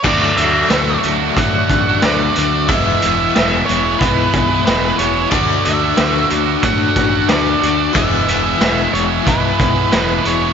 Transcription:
<<
  \new Staff \with { instrumentName = "Lead electric guitar" } { \time 4/4 \key d \lydian \tempo 4 = 91 d''8 e''4 r8 fis''4 d''4 | e''4. cis''8 b'4 b'8 cis''8 | d''8 e''4 r8 fis''4 d''4 | e''4. cis''8 b'4 b'8 cis''8 | }
  \new Staff \with { instrumentName = "Overdriven electric guitar" } { \time 4/4 \key d \lydian <d a d' fis'>8 <d a d' fis'>16 <a d' fis'>16 <d a d' fis'>8 <d a d' fis'>16 <a d' fis'>16 <d a d' fis'>16 <a d' fis'>8 <a d' fis'>16 <d a d' fis'>8 <d a d' fis'>16 <a d' fis'>16 | <e gis b e'>8 <e gis b e'>16 <gis b e'>16 <e gis b e'>8 <e gis b e'>16 <gis b e'>16 <e gis b e'>16 <gis b e'>8 <gis b e'>16 <e gis b e'>8 <e gis b e'>16 <gis b e'>16 | <d a d' fis'>8 <d a d' fis'>16 <a d' fis'>16 <d a d' fis'>8 <d a d' fis'>16 <a d' fis'>16 <d a d' fis'>16 <a d' fis'>8 <a d' fis'>16 <d a d' fis'>8 <d a d' fis'>16 <a d' fis'>16 | <e gis b e'>8 <e gis b e'>16 <gis b e'>16 <e gis b e'>8 <e gis b e'>16 <gis b e'>16 <e gis b e'>16 <gis b e'>8 <gis b e'>16 <e gis b e'>8 <e gis b e'>16 <gis b e'>16 | }
  \new Staff \with { instrumentName = "Steel-string acoustic guitar" } { \time 4/4 \key d \lydian <d a d' fis'>8 <a d' fis'>8 <d a d' fis'>8 <a d' fis'>8 <d a d' fis'>8 <a d' fis'>8 <d a d' fis'>8 <a d' fis'>8 | <e, b, e gis b gis'>8 <e gis b gis'>8 <e gis b gis'>8 <e gis b gis'>8 <e, b, e gis b gis'>8 <e gis b gis'>8 <e gis b gis'>8 <e gis b gis'>8 | <d a d' fis'>8 <a d' fis'>8 <d a d' fis'>8 <a d' fis'>8 <d a d' fis'>8 <a d' fis'>8 <d a d' fis'>8 <a d' fis'>8 | <e, b, e gis b gis'>8 <e gis b gis'>8 <e gis b gis'>8 <e gis b gis'>8 <e, b, e gis b gis'>8 <e gis b gis'>8 <e gis b gis'>8 <e gis b gis'>8 | }
  \new Staff \with { instrumentName = "Overdriven electric guitar" } { \time 4/4 \key d \lydian <d fis a d'>1 | <e gis b e'>1 | <d a d' fis'>1 | <e gis b e'>1 | }
  \new Staff \with { instrumentName = "Fingered electric bass" } { \clef bass \time 4/4 \key d \lydian d,8 d,8 d,8 d,8 a,8 a,,8 d,8 d,8 | e,,8 e,,8 e,,8 e,,8 b,,8 b,,8 e,,8 e,,8 | d,8 d,8 d,8 d,8 a,8 a,,8 d,8 d,8 | e,,8 e,,8 e,,8 e,,8 b,,8 b,,8 e,,8 e,,8 | }
  \new DrumStaff \with { instrumentName = "Drums" } \drummode { \time 4/4 <cymc bd>8 hh8 <hh sn>8 hh8 <hh bd>8 <hh bd>8 <hh sn>8 hh8 | <hh bd>8 hh8 <hh sn>8 hh8 <hh bd>8 <hh bd>8 <hh sn>8 hh8 | <hh bd>8 hh8 <hh sn>8 hh8 <hh bd>8 <hh bd>8 <hh sn>8 hh8 | <hh bd>8 hh8 <hh sn>8 hh8 <hh bd>8 <hh bd>8 <hh sn>8 hh8 | }
>>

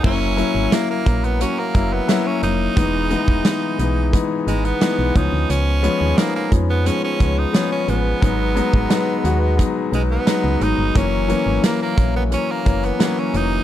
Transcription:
<<
  \new Staff \with { instrumentName = "Tenor saxophone" } { \time 4/4 \key fis \mixolydian \tempo 4 = 88 cis'4 ais16 ais8 b16 cis'16 ais8 b8 cis'16 dis'8~ | dis'2 r8 gis16 b8. dis'8 | cis'4 ais16 ais8 b16 cis'16 cis'8 dis'8 cis'16 b8~ | b2 r8 gis16 b8. dis'8 |
cis'4 ais16 ais8 b16 cis'16 ais8 b8 cis'16 dis'8 | }
  \new Staff \with { instrumentName = "Grand piano" } { \time 4/4 \key fis \mixolydian <dis'' gis''>16 r2. r8. | r1 | r1 | r1 |
r1 | }
  \new Staff \with { instrumentName = "Grand piano" } { \time 4/4 \key fis \mixolydian <fis ais cis' e'>8 <fis ais cis' e'>8 <fis ais cis' e'>8 <fis ais cis' e'>8 <fis ais cis' fis'>8 <fis ais cis' e'>8 <fis ais cis' e'>8 <fis ais cis' e'>8 | <e gis b dis'>8 <e gis b dis'>8 <e gis b dis'>8 <e gis b dis'>8 <e gis b dis'>8 <e gis b dis'>8 <e gis b dis'>8 <eis gis b cis'>8~ | <eis gis b cis'>8 <eis gis b cis'>8 <eis gis b dis'>8 <eis gis b cis'>8 <eis gis b cis'>8 <eis gis b cis'>8 <eis gis b cis'>8 <eis gis b cis'>8 | <fis gis b dis'>8 <fis gis b dis'>8 <fis gis b dis'>8 <fis gis b fis'>8 <fis gis b dis'>8 <fis gis b dis'>8 <fis gis b dis'>8 <fis gis b dis'>8 |
<e fis ais cis'>8 <e fis ais cis'>8 <e fis ais cis'>8 <e fis ais cis'>8 <e fis ais cis'>8 <e fis ais cis'>8 <e fis ais cis'>8 <e fis ais cis'>8 | }
  \new Staff \with { instrumentName = "FM bass" } { \clef bass \time 4/4 \key fis \mixolydian fis,,8. gis,,16 r8 ais,,8. r16 fis,,8 r8 eis,,8 | e,,8. e,,16 r8 b,,8. r16 gis,,8 r16 b,,16 cis,16 d,16 | cis,8. dis,16 r8 eis,8. r16 cis,8 r8 a,,8 | gis,,8. gis,,16 r8 dis,8. r16 b,,8 r16 cis,16 gis,,16 g,,16 |
fis,,8. gis,,16 r8 ais,,8. r16 fis,,8 r8 eis,,8 | }
  \new DrumStaff \with { instrumentName = "Drums" } \drummode { \time 4/4 <cymc bd>8 hh8 <hh sn>8 <hh bd>16 hh16 hh8 <hh bd>8 <hh sn>8 hh8 | <hh bd>8 hh16 bd16 <hh sn>8 hh8 <hh bd>8 hh16 hh16 <hh sn>8 <hh bd>8 | hh8 hh8 <hh sn>8 <hh bd>8 hh8 <hh bd>8 <hh sn>8 hh8 | <hh bd>8 hh16 bd16 <hh sn>8 hh8 <hh bd>8 hh8 <hh sn>8 hh8 |
<hh bd>8 hh8 <hh sn>8 <hh bd>8 hh8 <hh bd>16 hh16 <hh sn>8 hh8 | }
>>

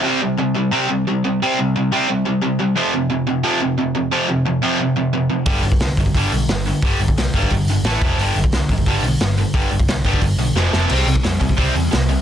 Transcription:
<<
  \new Staff \with { instrumentName = "Overdriven electric guitar" } { \clef bass \time 4/4 \key c \major \tempo 4 = 177 <c g c'>8 <c g>8 <c g>8 <c g>8 <c g c'>8 <c g>8 <c g>8 <c g>8 | <c g c'>8 <c g>8 <c g>8 <c g c'>8 <c g>8 <c g>8 <c g>8 <c g>8 | <f, c f>8 <f, c>8 <f, c>8 <f, c>8 <f, c f>8 <f, c>8 <f, c>8 <f, c>8 | <f, c f>8 <f, c>8 <f, c>8 <f, c f>8 <f, c>8 <f, c>8 <f, c>8 <f, c>8 |
<g, d g>8 <g, d>8 <g, d>8 <g, d>8 <g, d g>8 <g, d>8 <g, d>8 <g, d>8 | <g, d g>8 <g, d>8 <g, d>8 <g, d g>8 <g, d>8 <g, d>8 <a, e a>8 <f, c f>8 | <g, d g>8 <g, d>8 <g, d>8 <g, d>8 <g, d g>8 <g, d>8 <g, d>8 <g, d>8 | <g, d g>8 <g, d>8 <g, d>8 <g, d g>8 <g, d>8 <g, d>8 <f, c f>8 <f, c f>8 |
<c g c'>8 <c g>8 <c g>8 <c g>8 <c g c'>8 <c g>8 <c g>8 <c g>8 | }
  \new Staff \with { instrumentName = "Picked electric bass" } { \clef bass \time 4/4 \key c \major r1 | r1 | r1 | r1 |
g,,8 g,,8 c,8 g,,8 g,,8 b,,8 g,,4 | g,,8 g,,8 c,8 g,,8 g,,8 g,,8 a,,8 f,,8 | g,,8 g,,8 c,8 g,,8 g,,8 b,,8 g,,4 | g,,8 g,,8 c,8 g,,8 g,,8 b,,8 f,,8 f,,8 |
c,8 c,8 f,8 c,8 c,8 e,8 c,4 | }
  \new DrumStaff \with { instrumentName = "Drums" } \drummode { \time 4/4 r4 r4 r4 r4 | r4 r4 r4 r4 | r4 r4 r4 r4 | r4 r4 r4 r4 |
<hho bd>8 hho16 bd16 <hho sn>8 <hho bd>16 bd16 <hho bd>8 hho8 <hho sn>8 hho8 | <hho bd>8 hho16 bd16 <hho sn>8 <hho bd>16 bd16 <hho bd>8 hho8 <hho sn>8 <hho bd>8 | hho8 hho16 bd16 <hho sn>8 <hho bd>16 bd16 <hho bd>8 hho8 <hho sn>8 hho8 | <hho bd>8 hho16 bd16 <hho sn>8 <hho bd>16 bd16 <hho bd>8 hho8 sn8 sn8 |
<cymc hho>8 hho16 bd16 <hho sn>8 <hho bd>16 bd16 <hho bd>8 hho8 <hho sn>8 hho8 | }
>>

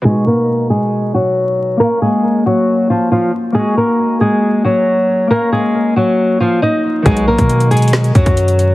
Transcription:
<<
  \new Staff \with { instrumentName = "Nylon-string guitar" } { \time 4/4 \key ces \lydian \tempo 4 = 137 <aes aes'>8 <bes bes'>4 <aes aes'>4 <fis fis'>4. | <bes bes'>8 <aes aes'>4 <ges ges'>4 <f f'>8 <f f'>8 r8 | <aes aes'>8 <bes bes'>4 <aes aes'>4 <ges ges'>4. | <bes bes'>8 <aes aes'>4 <ges ges'>4 <f f'>8 <ees' ees''>4 |
<aes aes'>8 <bes bes'>4 <aes aes'>4 <fis fis'>4. | }
  \new Staff \with { instrumentName = "Harp" } { \time 4/4 \key ces \lydian <b, dis' fis'>1 | <bes des' f''>1 | <bes ees' ges'>1 | <bes des' f''>1 |
<b, dis fis dis'>1 | }
  \new Staff \with { instrumentName = "Brass ensemble" } { \clef bass \time 4/4 \key ces \lydian r1 | r1 | r1 | r1 |
<dis, b, fis>4 r2. | }
  \new Staff \with { instrumentName = "808-style bass" } { \clef bass \time 4/4 \key ces \lydian r1 | r1 | r1 | r1 |
b,,8. b,4.~ b,16 fis,4. | }
  \new DrumStaff \with { instrumentName = "Drums" } \drummode { \time 4/4 r4 r4 r4 r4 | r4 r4 r4 r4 | r4 r4 r4 r4 | r4 r4 r4 r4 |
<hh bd>16 hh8 <hh bd>16 hh16 hh16 hh32 hh32 hh32 hh32 <hh sn>16 hh16 <hh bd>16 <hh bd>16 hh16 hh16 hh8 | }
>>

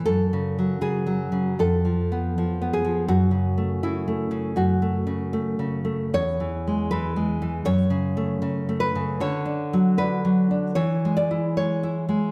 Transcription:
\new Staff \with { instrumentName = "Nylon-string guitar" } { \clef bass \time 4/4 \key fis \minor \tempo 4 = 78 << { a'4 gis'4 a'4. aes'8 | fis'4 e'4 fis'8 r4. | cis''4 b'4 cis''4. b'8 | cis''4 b'4 cis''8 d''8 cis''4 | } \\ { \tuplet 3/2 { fis,8 cis8 fis8 cis8 fis8 cis8 f,8 f8 ces'8 f8 ces'8 f8 } | \tuplet 3/2 { fis,8 cis8 a8 cis8 a8 cis8 fis,8 a8 cis8 a8 cis8 a8 } | \tuplet 3/2 { e,8 e8 gis8 e8 gis8 e8 fis,8 cis8 a8 cis8 a8 cis8 } | \tuplet 3/2 { d8 d'8 fis8 d'8 fis8 d'8 e8 gis8 e'8 gis8 e'8 gis8 } | } >> }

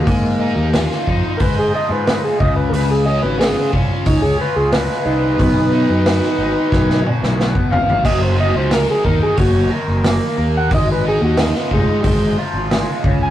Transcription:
<<
  \new Staff \with { instrumentName = "Transistor combo organ" } { \time 4/4 \key des \major \tempo 4 = 90 bes4 r4 <bes' ces''>16 aes'16 ees''16 ces''16 ces''16 aes'16 ees''16 ces''16 | <bes' ces''>16 aes'16 ees''16 ces''16 <ces' aes'>8 r8 ees'16 aes'16 ces''16 aes'16 ces''8 <ees' ces''>8~ | <ees' ces''>2~ <ees' ces''>8 r4 f''8 | ees''16 c''16 ees''16 c''16 bes'16 aes'16 bes'16 aes'16 ges'8 r4 r16 ges''16 |
ees''16 ces''16 aes'16 ges'16 ees'16 ces'16 aes8 <g aes>8 r4 r16 aes''16 | }
  \new Staff \with { instrumentName = "Overdriven electric guitar" } { \time 4/4 \key des \major aes8 ees'8 f'8 ees'8 c''8 f'8 aes8 des8 | des8 des'8 f'8 des'8 des''8 f'8 aes8 f'8 | b8 dis'8 fis'8 dis'8 cis''8 fis'8 b8 fis'8 | ges8 ees'8 bes'8 ees'8 des''8 bes'8 bes8 bes'8 |
aes8 ees'8 f'8 ees'8 c''8 f'8 aes8 des8 | }
  \new Staff \with { instrumentName = "Fingered electric bass" } { \clef bass \time 4/4 \key des \major aes,8. ees,8 r16 f,16 r16 aes,8 r16 aes,8 r16 des,8 | des,8. aes,,8 r16 c,16 r16 des,8 r16 des,8 r16 c,8 | b,,8. fis,8 r16 aes,,16 r16 b,,8 r16 b,,8 r16 aes,,8 | ges,,8. des,8 r16 ees,16 r16 ges,,8 r16 ges,,8 r16 ees,8 |
aes,,8. ees,8 r16 f,,16 r16 aes,,8 r16 aes,,8 r16 des,8 | }
  \new DrumStaff \with { instrumentName = "Drums" } \drummode { \time 4/4 <hho bd>4 <hho sn>16 sn16 bd8 <hho bd>4 <hho sn>8 bd8 | hho4 <hho sn>8 bd8 <hho bd>4 <hho sn>16 sn8. | <hho bd>4 <hho sn>16 sn8. <bd sn>16 sn16 toml16 sn16 sn16 bd16 tomfh16 tomfh16 | <cymc hho bd>4 <hho sn>8 bd8 <hho bd>4 <hho sn>4 |
<hho bd>4 <hho sn>16 sn16 bd8 <hho bd>4 <hho sn>8 bd8 | }
>>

